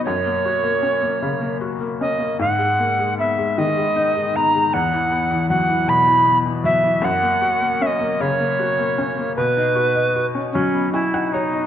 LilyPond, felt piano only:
<<
  \new Staff \with { instrumentName = "Felt piano" } { \time 6/8 \key fis \mixolydian \tempo 4. = 51 r2. | r2. | r2. | r2. |
r2 gis''16 fis''16 cis''8 | }
  \new Staff \with { instrumentName = "Felt piano" } { \time 6/8 \key fis \mixolydian fis,16 ais16 fis'16 ais16 cis'16 ais16 cis16 ais16 fis'16 ais16 cis'16 ais16 | gis,16 gis16 ais16 gis16 b16 gis16 dis16 gis16 dis'16 gis16 b16 gis16 | e,16 e16 b16 e16 fis16 e16 b,16 e16 b16 e16 fis16 e16 | fis,16 ais16 fis'16 ais16 cis'16 ais16 cis16 ais16 fis'16 ais16 cis'16 ais16 |
b,16 dis'16 fis'16 dis''16 fis'16 cis'16 fis16 b16 fis'16 dis'16 fis'16 dis'16 | }
>>